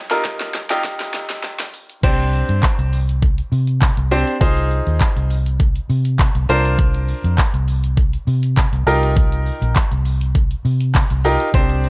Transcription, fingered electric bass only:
2.03 2.42 C2 loud
2.49 2.61 G2 loud
2.78 3.40 C2 medium
3.52 3.90 C3 medium
3.97 4.22 C2 medium
4.41 4.79 C2 loud
4.87 4.98 D#2 loud
5.16 5.78 C2 medium
5.90 6.28 C3 medium
6.35 6.47 C2 medium
6.49 7.12 C2 loud
7.24 7.36 F2 loud
7.54 8.15 C2 medium
8.27 8.65 C3 loud
8.72 8.84 C2 medium
8.86 9.49 C2 loud
9.62 9.73 A#1 loud
9.92 10.53 C2 medium
10.65 11.03 C3 medium
11.10 11.35 C2 medium
11.54 11.89 C2 loud

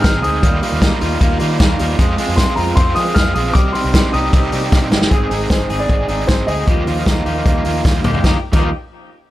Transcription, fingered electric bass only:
0.04 0.24 G#1 loud
0.24 0.40 D2 medium
0.43 0.59 D#2 loud
0.72 0.88 D#2 medium
1.02 1.18 D#2 loud
1.21 1.37 D#2 loud
1.41 1.57 D#3 loud
1.60 1.76 D#2 loud
1.80 1.96 D#2 loud
1.99 2.15 F2 loud
2.29 2.44 F2 medium
2.58 2.74 F2 loud
2.77 2.93 F2 loud
2.97 3.13 F3 medium
3.16 3.32 F2 loud
3.36 3.52 A#1 loud
3.55 3.71 C2 loud
3.84 4.00 C2 loud
4.13 4.29 C2 loud
4.33 4.49 C2 medium
4.53 4.69 C3 loud
4.72 4.92 C2 loud
4.92 5.08 G1 loud
5.12 5.27 G#1 loud
5.31 5.47 G#1 loud
5.50 5.66 G#1 medium
5.70 5.86 G#1 medium
5.90 6.06 G#1 medium
6.09 6.25 G#1 medium
6.29 6.45 G#1 loud
6.48 6.64 D2 medium
6.68 6.84 D#2 medium
6.87 7.03 D#2 loud
7.06 7.23 D#2 loud
7.26 7.42 D#2 loud
7.46 7.62 D#2 loud
7.65 7.81 D#2 medium
7.85 8.01 D#2 loud
8.05 8.20 D2 loud
8.24 8.35 D#2 medium
8.53 8.72 D#2 medium

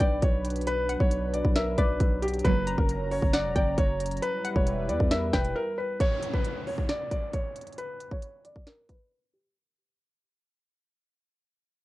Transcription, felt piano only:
0.00 0.20 D5 medium
0.23 0.64 C#5 medium
0.67 0.98 B4 loud
1.00 1.32 C#5 medium
1.34 1.53 D5 medium
1.56 1.76 A#4 medium
1.78 2.20 B4 medium
2.22 2.42 G4 medium
2.44 2.76 B4 loud
2.78 3.09 A#4 medium
3.11 3.31 C#5 medium
3.33 3.53 D5 loud
3.56 3.75 D5 medium
3.78 4.20 C#5 medium
4.22 4.54 B4 loud
4.56 4.87 C#5 medium
4.89 5.09 D5 medium
5.11 5.31 A#4 medium
5.34 5.54 B4 medium
5.56 5.75 A#4 medium
5.78 5.98 B4 medium
6.01 6.32 C#5 loud
6.34 6.65 B4 medium
6.67 6.87 C#5 medium
6.89 7.09 D5 medium
7.11 7.31 D5 medium
7.34 7.75 C#5 medium
7.78 8.09 B4 loud
8.12 8.43 C#5 medium
8.45 8.64 D5 medium
8.67 8.86 A#4 medium
8.89 9.31 B4 medium
9.33 9.53 G4 medium

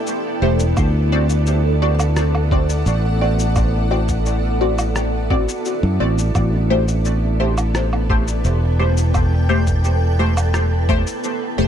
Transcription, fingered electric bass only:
0.42 0.73 E1 medium
0.77 2.83 D2 loud
2.86 5.45 A1 medium
5.83 5.98 F#2 loud
6.00 6.31 A1 medium
6.35 8.41 A1 loud
8.45 11.03 E1 medium
11.59 11.68 E1 medium

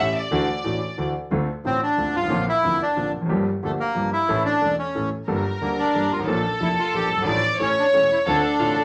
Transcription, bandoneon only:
1.66 1.81 C4 medium
1.83 2.16 D4 medium
2.16 2.46 F4 medium
2.49 2.82 E4 loud
2.82 3.12 D4 medium
3.64 3.71 A3 medium
3.80 4.10 A#3 medium
4.13 4.43 E4 medium
4.45 4.76 D4 loud
4.79 5.10 C#4 medium
5.62 5.69 A#3 medium
5.79 6.12 D4 medium
6.12 6.20 F4 medium
6.62 6.69 E4 medium
6.79 6.95 F4 medium
6.95 7.10 G4 medium
7.12 7.19 A4 medium
7.63 7.77 C#4 medium
7.79 7.86 D4 medium
7.95 8.02 C#4 medium
8.12 8.19 E4 medium
8.28 8.84 D4 medium

